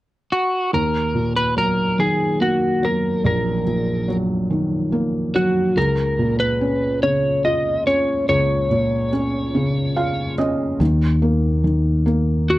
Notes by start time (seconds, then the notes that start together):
0.32 F#4
0.73 D#2 A#4
1.15 A#2
1.36 B4
1.56 F#3 A#4
1.99 D#3 G#4
2.40 A#3 F#4
2.83 F#3 A#4
3.24 A#1 A#4
3.67 A#2
4.08 F#3
4.50 D#3
4.92 A#3
5.35 F#3 F#4
5.77 C#2 A#4
6.19 A#2
6.40 B4
6.61 C#4
7.03 C#3 C#5
7.45 F4 D#5
7.86 C#4 C#5
8.29 C#2 C#5
8.71 A#2
9.13 C#4
9.55 C#3
9.96 F4 F5
10.38 C#4 D#5
10.80 D#2 D#3
11.22 A#3
11.64 D#3
12.06 A#3
12.50 F#4